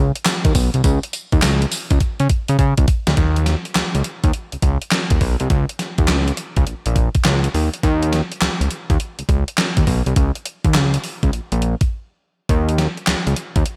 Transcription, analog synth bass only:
0, 0, Header, 1, 2, 480
1, 0, Start_track
1, 0, Tempo, 582524
1, 695, Time_signature, 4, 2, 24, 8
1, 11342, End_track
2, 0, Start_track
2, 0, Title_t, "Analog synth bass"
2, 0, Program_c, 0, 38
2, 0, Note_on_c, 0, 37, 98
2, 98, Note_off_c, 0, 37, 0
2, 371, Note_on_c, 0, 39, 85
2, 437, Note_off_c, 0, 39, 0
2, 454, Note_on_c, 0, 35, 92
2, 579, Note_off_c, 0, 35, 0
2, 612, Note_on_c, 0, 36, 94
2, 677, Note_off_c, 0, 36, 0
2, 694, Note_on_c, 0, 37, 112
2, 819, Note_off_c, 0, 37, 0
2, 1092, Note_on_c, 0, 39, 104
2, 1157, Note_off_c, 0, 39, 0
2, 1177, Note_on_c, 0, 37, 107
2, 1366, Note_off_c, 0, 37, 0
2, 1573, Note_on_c, 0, 37, 102
2, 1638, Note_off_c, 0, 37, 0
2, 1812, Note_on_c, 0, 49, 105
2, 1878, Note_off_c, 0, 49, 0
2, 2053, Note_on_c, 0, 49, 96
2, 2118, Note_off_c, 0, 49, 0
2, 2133, Note_on_c, 0, 49, 96
2, 2258, Note_off_c, 0, 49, 0
2, 2290, Note_on_c, 0, 37, 83
2, 2356, Note_off_c, 0, 37, 0
2, 2532, Note_on_c, 0, 38, 101
2, 2598, Note_off_c, 0, 38, 0
2, 2614, Note_on_c, 0, 39, 117
2, 2929, Note_off_c, 0, 39, 0
2, 3094, Note_on_c, 0, 37, 52
2, 3157, Note_off_c, 0, 37, 0
2, 3252, Note_on_c, 0, 37, 83
2, 3318, Note_off_c, 0, 37, 0
2, 3493, Note_on_c, 0, 39, 95
2, 3558, Note_off_c, 0, 39, 0
2, 3732, Note_on_c, 0, 37, 46
2, 3765, Note_off_c, 0, 37, 0
2, 3812, Note_on_c, 0, 37, 94
2, 3938, Note_off_c, 0, 37, 0
2, 4210, Note_on_c, 0, 39, 86
2, 4276, Note_off_c, 0, 39, 0
2, 4294, Note_on_c, 0, 35, 101
2, 4419, Note_off_c, 0, 35, 0
2, 4454, Note_on_c, 0, 36, 85
2, 4519, Note_off_c, 0, 36, 0
2, 4534, Note_on_c, 0, 37, 106
2, 4659, Note_off_c, 0, 37, 0
2, 4932, Note_on_c, 0, 39, 83
2, 5019, Note_on_c, 0, 37, 87
2, 5032, Note_off_c, 0, 39, 0
2, 5208, Note_off_c, 0, 37, 0
2, 5412, Note_on_c, 0, 37, 93
2, 5478, Note_off_c, 0, 37, 0
2, 5496, Note_on_c, 0, 34, 52
2, 5558, Note_off_c, 0, 34, 0
2, 5654, Note_on_c, 0, 34, 91
2, 5843, Note_off_c, 0, 34, 0
2, 5976, Note_on_c, 0, 37, 98
2, 6166, Note_off_c, 0, 37, 0
2, 6217, Note_on_c, 0, 39, 91
2, 6341, Note_off_c, 0, 39, 0
2, 6455, Note_on_c, 0, 39, 117
2, 6770, Note_off_c, 0, 39, 0
2, 6935, Note_on_c, 0, 37, 45
2, 6997, Note_off_c, 0, 37, 0
2, 7092, Note_on_c, 0, 37, 84
2, 7157, Note_off_c, 0, 37, 0
2, 7334, Note_on_c, 0, 39, 90
2, 7399, Note_off_c, 0, 39, 0
2, 7573, Note_on_c, 0, 37, 52
2, 7605, Note_off_c, 0, 37, 0
2, 7653, Note_on_c, 0, 37, 96
2, 7778, Note_off_c, 0, 37, 0
2, 8051, Note_on_c, 0, 39, 88
2, 8117, Note_off_c, 0, 39, 0
2, 8134, Note_on_c, 0, 35, 98
2, 8259, Note_off_c, 0, 35, 0
2, 8292, Note_on_c, 0, 36, 93
2, 8358, Note_off_c, 0, 36, 0
2, 8376, Note_on_c, 0, 37, 100
2, 8500, Note_off_c, 0, 37, 0
2, 8773, Note_on_c, 0, 39, 89
2, 8856, Note_on_c, 0, 37, 96
2, 8869, Note_off_c, 0, 39, 0
2, 9046, Note_off_c, 0, 37, 0
2, 9254, Note_on_c, 0, 37, 97
2, 9319, Note_off_c, 0, 37, 0
2, 9336, Note_on_c, 0, 34, 52
2, 9398, Note_off_c, 0, 34, 0
2, 9493, Note_on_c, 0, 34, 98
2, 9683, Note_off_c, 0, 34, 0
2, 10295, Note_on_c, 0, 39, 113
2, 10610, Note_off_c, 0, 39, 0
2, 10777, Note_on_c, 0, 37, 49
2, 10839, Note_off_c, 0, 37, 0
2, 10933, Note_on_c, 0, 37, 89
2, 10998, Note_off_c, 0, 37, 0
2, 11173, Note_on_c, 0, 39, 95
2, 11238, Note_off_c, 0, 39, 0
2, 11342, End_track
0, 0, End_of_file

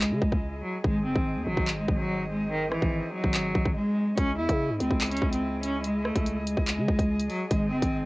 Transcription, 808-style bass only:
0, 0, Header, 1, 2, 480
1, 0, Start_track
1, 0, Key_signature, 4, "minor"
1, 0, Tempo, 416667
1, 971, Time_signature, 4, 2, 24, 8
1, 9278, End_track
2, 0, Start_track
2, 0, Title_t, "808-style bass"
2, 0, Program_c, 0, 38
2, 0, Note_on_c, 0, 37, 107
2, 130, Note_on_c, 0, 49, 101
2, 148, Note_off_c, 0, 37, 0
2, 244, Note_off_c, 0, 49, 0
2, 250, Note_on_c, 0, 37, 105
2, 366, Note_off_c, 0, 37, 0
2, 371, Note_on_c, 0, 37, 103
2, 716, Note_off_c, 0, 37, 0
2, 971, Note_on_c, 0, 32, 101
2, 1210, Note_on_c, 0, 30, 99
2, 1228, Note_off_c, 0, 32, 0
2, 1324, Note_off_c, 0, 30, 0
2, 1331, Note_on_c, 0, 32, 108
2, 1570, Note_on_c, 0, 39, 97
2, 1587, Note_off_c, 0, 32, 0
2, 1684, Note_off_c, 0, 39, 0
2, 1690, Note_on_c, 0, 32, 106
2, 1806, Note_off_c, 0, 32, 0
2, 1811, Note_on_c, 0, 32, 99
2, 2156, Note_off_c, 0, 32, 0
2, 2170, Note_on_c, 0, 32, 103
2, 3207, Note_off_c, 0, 32, 0
2, 3252, Note_on_c, 0, 32, 96
2, 3481, Note_off_c, 0, 32, 0
2, 3731, Note_on_c, 0, 32, 104
2, 4076, Note_off_c, 0, 32, 0
2, 4090, Note_on_c, 0, 32, 105
2, 4206, Note_off_c, 0, 32, 0
2, 4211, Note_on_c, 0, 32, 108
2, 4331, Note_off_c, 0, 32, 0
2, 4811, Note_on_c, 0, 37, 103
2, 5050, Note_on_c, 0, 40, 98
2, 5067, Note_off_c, 0, 37, 0
2, 5164, Note_off_c, 0, 40, 0
2, 5172, Note_on_c, 0, 49, 104
2, 5410, Note_on_c, 0, 44, 97
2, 5428, Note_off_c, 0, 49, 0
2, 5525, Note_off_c, 0, 44, 0
2, 5531, Note_on_c, 0, 37, 101
2, 5646, Note_off_c, 0, 37, 0
2, 5651, Note_on_c, 0, 37, 104
2, 5996, Note_off_c, 0, 37, 0
2, 6010, Note_on_c, 0, 37, 104
2, 7047, Note_off_c, 0, 37, 0
2, 7091, Note_on_c, 0, 37, 97
2, 7552, Note_off_c, 0, 37, 0
2, 7570, Note_on_c, 0, 37, 106
2, 7810, Note_on_c, 0, 49, 96
2, 7828, Note_off_c, 0, 37, 0
2, 7924, Note_off_c, 0, 49, 0
2, 7930, Note_on_c, 0, 37, 102
2, 8045, Note_off_c, 0, 37, 0
2, 8050, Note_on_c, 0, 37, 101
2, 8396, Note_off_c, 0, 37, 0
2, 8650, Note_on_c, 0, 32, 108
2, 8891, Note_on_c, 0, 30, 98
2, 8908, Note_off_c, 0, 32, 0
2, 9005, Note_off_c, 0, 30, 0
2, 9012, Note_on_c, 0, 32, 106
2, 9268, Note_off_c, 0, 32, 0
2, 9278, End_track
0, 0, End_of_file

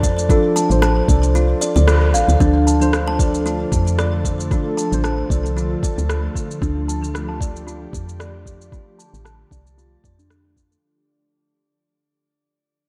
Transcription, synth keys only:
0, 0, Header, 1, 2, 480
1, 0, Start_track
1, 0, Key_signature, -1, "minor"
1, 0, Tempo, 526316
1, 275, Time_signature, 4, 2, 24, 8
1, 11753, End_track
2, 0, Start_track
2, 0, Title_t, "Synth keys"
2, 0, Program_c, 0, 88
2, 0, Control_c, 0, 64, 127
2, 0, Note_on_c, 0, 53, 68
2, 0, Note_on_c, 0, 62, 67
2, 0, Note_on_c, 0, 69, 85
2, 0, Note_on_c, 0, 72, 99
2, 238, Note_off_c, 0, 53, 0
2, 247, Note_off_c, 0, 62, 0
2, 256, Note_off_c, 0, 69, 0
2, 261, Note_on_c, 0, 53, 87
2, 269, Note_on_c, 0, 62, 84
2, 282, Note_on_c, 0, 69, 98
2, 609, Note_off_c, 0, 53, 0
2, 613, Note_off_c, 0, 62, 0
2, 619, Note_off_c, 0, 69, 0
2, 635, Note_on_c, 0, 53, 93
2, 641, Note_on_c, 0, 62, 80
2, 654, Note_off_c, 0, 72, 0
2, 654, Note_on_c, 0, 72, 97
2, 962, Note_off_c, 0, 53, 0
2, 966, Note_off_c, 0, 62, 0
2, 972, Note_off_c, 0, 72, 0
2, 975, Note_on_c, 0, 53, 67
2, 996, Note_on_c, 0, 62, 65
2, 1012, Note_on_c, 0, 69, 81
2, 2159, Note_off_c, 0, 53, 0
2, 2169, Note_off_c, 0, 62, 0
2, 2178, Note_off_c, 0, 69, 0
2, 2188, Note_on_c, 0, 53, 85
2, 2197, Note_on_c, 0, 62, 76
2, 2205, Control_c, 0, 64, 0
2, 2206, Note_on_c, 0, 69, 84
2, 2338, Control_c, 0, 64, 127
2, 2532, Note_off_c, 0, 53, 0
2, 2537, Note_off_c, 0, 62, 0
2, 2541, Note_off_c, 0, 69, 0
2, 2557, Note_on_c, 0, 53, 83
2, 2566, Note_on_c, 0, 62, 73
2, 2574, Note_on_c, 0, 72, 94
2, 2884, Note_off_c, 0, 53, 0
2, 2888, Note_off_c, 0, 62, 0
2, 2892, Note_off_c, 0, 72, 0
2, 2902, Note_on_c, 0, 53, 66
2, 2921, Note_on_c, 0, 62, 61
2, 2940, Note_on_c, 0, 69, 77
2, 4082, Note_off_c, 0, 53, 0
2, 4092, Note_off_c, 0, 62, 0
2, 4102, Note_off_c, 0, 69, 0
2, 4109, Note_on_c, 0, 53, 81
2, 4121, Note_on_c, 0, 62, 75
2, 4131, Note_on_c, 0, 69, 87
2, 4453, Note_off_c, 0, 53, 0
2, 4458, Note_off_c, 0, 62, 0
2, 4464, Note_off_c, 0, 69, 0
2, 4486, Note_on_c, 0, 53, 79
2, 4495, Note_on_c, 0, 62, 77
2, 4503, Note_on_c, 0, 72, 87
2, 4808, Note_off_c, 0, 53, 0
2, 4812, Note_off_c, 0, 62, 0
2, 4817, Note_off_c, 0, 72, 0
2, 4819, Note_on_c, 0, 53, 65
2, 4836, Note_on_c, 0, 62, 60
2, 4856, Note_on_c, 0, 69, 77
2, 6001, Note_off_c, 0, 53, 0
2, 6010, Note_off_c, 0, 62, 0
2, 6019, Note_off_c, 0, 69, 0
2, 6048, Control_c, 0, 64, 0
2, 11753, End_track
0, 0, End_of_file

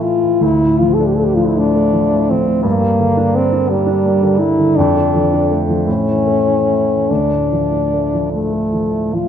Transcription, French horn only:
0, 0, Header, 1, 2, 480
1, 0, Start_track
1, 0, Key_signature, -1, "minor"
1, 0, Tempo, 769231
1, 263, Time_signature, 6, 3, 24, 8
1, 1213, Tempo, 697674
1, 2653, Tempo, 732601
1, 3613, Tempo, 765306
1, 4093, Tempo, 819672
1, 5859, End_track
2, 0, Start_track
2, 0, Title_t, "French horn"
2, 0, Program_c, 0, 60
2, 12, Note_on_c, 0, 65, 64
2, 269, Note_on_c, 0, 64, 71
2, 278, Note_off_c, 0, 65, 0
2, 486, Note_on_c, 0, 65, 62
2, 495, Note_off_c, 0, 64, 0
2, 586, Note_on_c, 0, 69, 51
2, 595, Note_off_c, 0, 65, 0
2, 664, Note_on_c, 0, 67, 51
2, 673, Note_off_c, 0, 69, 0
2, 725, Note_on_c, 0, 69, 49
2, 734, Note_off_c, 0, 67, 0
2, 785, Note_on_c, 0, 67, 53
2, 794, Note_off_c, 0, 69, 0
2, 840, Note_on_c, 0, 65, 52
2, 849, Note_off_c, 0, 67, 0
2, 911, Note_on_c, 0, 64, 51
2, 921, Note_off_c, 0, 65, 0
2, 988, Note_on_c, 0, 62, 60
2, 997, Note_off_c, 0, 64, 0
2, 1460, Note_on_c, 0, 60, 58
2, 1471, Note_off_c, 0, 62, 0
2, 1693, Note_off_c, 0, 60, 0
2, 1697, Note_on_c, 0, 58, 69
2, 2182, Note_on_c, 0, 60, 73
2, 2192, Note_off_c, 0, 58, 0
2, 2418, Note_on_c, 0, 55, 63
2, 2428, Note_off_c, 0, 60, 0
2, 2885, Note_on_c, 0, 64, 71
2, 2895, Note_off_c, 0, 55, 0
2, 3131, Note_on_c, 0, 62, 72
2, 3141, Note_off_c, 0, 64, 0
2, 3673, Note_off_c, 0, 62, 0
2, 3853, Note_on_c, 0, 61, 61
2, 4582, Note_on_c, 0, 62, 51
2, 4591, Note_off_c, 0, 61, 0
2, 5294, Note_off_c, 0, 62, 0
2, 5297, Note_on_c, 0, 57, 44
2, 5777, Note_on_c, 0, 65, 50
2, 5786, Note_off_c, 0, 57, 0
2, 5859, Note_off_c, 0, 65, 0
2, 5859, End_track
0, 0, End_of_file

